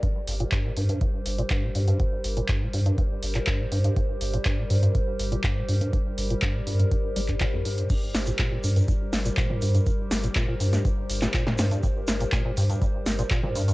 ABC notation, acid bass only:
X:1
M:4/4
L:1/16
Q:1/4=122
K:Gm
V:1 name="Acid bass" clef=bass
G,, z2 B,, G,, B,, G,, G,, G,, z2 B,, G,, B,, G,, G,, | G,, z2 B,, G,, B,, G,, G,, G,, z2 B,, G,, B,, G,, G,, | G,, z2 B,, G,, B,, G,, G,, G,, z2 B,, G,, B,, G,, G,, | G,, z2 B,, G,, B,, G,, G,, G,, z G, G,, B,, F,, G,, _A,, |
G,, z2 B,, B,, B,, G,, G,, G,, z2 B,, B,, B,, G,, G,, | G,, z2 B,, B,, B,, G,, G,, G,, z2 B,, B,, B,, G,, G,, | G,, z2 B,, B,, B,, G,, G,, G,, z2 B,, B,, B,, G,, G,, |]